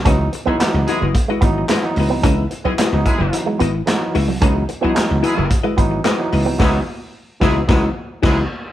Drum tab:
CC |--------|--------|--------|x-----x-|
HH |xxxxxxxo|xxxxxxxo|xxxxxxxo|--------|
CP |--x---x-|--x---x-|--x---x-|--------|
SD |--o---o-|--o---o-|--o---o-|o--oo-o-|
BD |o---oo--|o--o----|o---oo--|o--oo-o-|